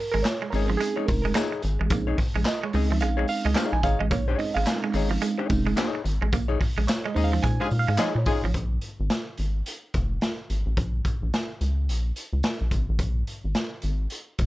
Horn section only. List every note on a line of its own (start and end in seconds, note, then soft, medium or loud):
7.60 7.68 G#3 medium
7.60 7.67 D#4 medium
7.60 7.68 F4 medium
7.60 7.68 G#4 loud
7.98 8.09 G#3 medium
7.98 8.09 D#4 medium
7.98 8.09 F4 medium
7.98 8.09 G#4 loud
8.26 8.44 G#3 medium
8.26 8.44 D#4 medium
8.26 8.44 F4 loud
8.26 8.44 G#4 loud